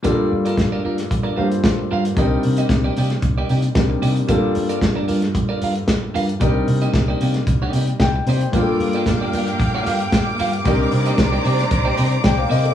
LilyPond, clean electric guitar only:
\new Staff \with { instrumentName = "Clean electric guitar" } { \time 4/4 \key g \minor \tempo 4 = 113 <d' f' bes' d''>8 r16 <d' f' bes' d''>16 r16 <d' f' bes' d''>16 <d' f' bes' d''>16 r8 <d' f' bes' d''>16 <d' f' bes' f''>16 r8. <d' f' bes' f''>16 r16 | <bes ees' g' d''>8 r16 <bes ees' g' ees''>16 r16 <bes ees' g' d''>16 <bes ees' g' d''>16 r8 <bes ees' g' d''>16 <bes ees' g' d''>16 r8. <bes ees' g' d''>16 r16 | <d' f' bes' d''>8 r16 <d' f' bes' d''>16 r16 <d' f' bes' d''>16 <d' f' bes' d''>16 r8 <d' f' bes' d''>16 <d' f' bes' f''>16 r8. <d' f' bes' f''>16 r16 | <bes ees' g' d''>8 r16 <bes ees' g' ees''>16 r16 <bes ees' g' d''>16 <bes ees' g' d''>16 r8 <bes ees' g' d''>16 <bes ees' g' d''>16 r8. <bes ees' g' d''>16 r16 |
<bes f' g' d''>8 r16 <bes f' g' d''>16 r16 <bes f' g' d''>16 <bes f' g' d''>16 r8 <bes f' g' d''>16 <bes f' g' f''>16 r8. <bes f' g' f''>16 r16 | <bes ees' g' d''>8 r16 <bes ees' g' ees''>16 r16 <bes ees' g' d''>16 <bes ees' g' d''>16 r8 <bes ees' g' d''>16 <bes ees' g' d''>16 r8. <bes ees' g' d''>16 r16 | }